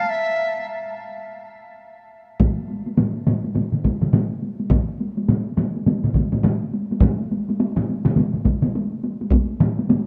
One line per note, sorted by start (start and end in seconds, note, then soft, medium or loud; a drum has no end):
0.00 0.11 F5 medium
0.10 0.67 E5 medium
2.40 taiko loud
2.40 taiko low-mid loud
2.40 taiko mid loud
2.40 taiko high medium
2.68 taiko high medium
2.86 taiko high medium
2.97 taiko low-mid loud
2.97 taiko mid loud
2.97 taiko high medium
3.27 taiko low-mid loud
3.27 taiko mid loud
3.27 taiko high medium
3.44 taiko high medium
3.55 taiko low-mid medium
3.55 taiko mid medium
3.55 taiko high medium
3.72 taiko low-mid medium
3.72 taiko mid medium
3.84 taiko medium
3.84 taiko low-mid medium
3.84 taiko mid medium
3.84 taiko high medium
4.01 taiko low-mid medium
4.01 taiko mid medium
4.01 taiko high medium
4.13 taiko low-mid loud
4.13 taiko mid loud
4.13 taiko high medium
4.43 taiko high medium
4.60 taiko high medium
4.71 taiko loud
4.71 taiko low-mid loud
4.71 taiko mid loud
4.71 taiko high medium
5.00 taiko high medium
5.17 taiko high medium
5.29 taiko low-mid loud
5.29 taiko mid loud
5.29 taiko high medium
5.57 taiko low-mid loud
5.57 taiko mid loud
5.57 taiko high medium
5.76 taiko high medium
5.86 taiko low-mid medium
5.86 taiko mid medium
5.86 taiko high medium
6.04 taiko low-mid medium
6.04 taiko mid medium
6.14 taiko medium
6.14 taiko low-mid medium
6.14 taiko mid medium
6.14 taiko high medium
6.32 taiko low-mid medium
6.32 taiko mid medium
6.32 taiko high medium
6.43 taiko low-mid loud
6.43 taiko mid loud
6.43 taiko high medium
6.74 taiko high medium
6.91 taiko high medium
7.01 taiko loud
7.01 taiko low-mid loud
7.01 taiko mid loud
7.01 taiko high medium
7.31 taiko high medium
7.49 taiko high medium
7.60 taiko high medium
7.76 taiko low-mid loud
7.76 taiko mid loud
7.89 taiko high medium
8.05 taiko low-mid loud
8.05 taiko mid loud
8.05 taiko high medium
8.16 taiko low-mid medium
8.16 taiko mid medium
8.16 taiko high medium
8.33 taiko low-mid medium
8.33 taiko mid medium
8.45 taiko medium
8.45 taiko low-mid medium
8.45 taiko mid medium
8.45 taiko high medium
8.62 taiko low-mid medium
8.62 taiko mid medium
8.62 taiko high medium
8.75 taiko high medium
9.03 taiko high medium
9.21 taiko high medium
9.30 taiko loud
9.30 taiko high medium
9.60 taiko low-mid loud
9.60 taiko mid loud
9.60 taiko high medium
9.79 taiko high medium
9.89 taiko low-mid medium
9.89 taiko mid medium
9.89 taiko high medium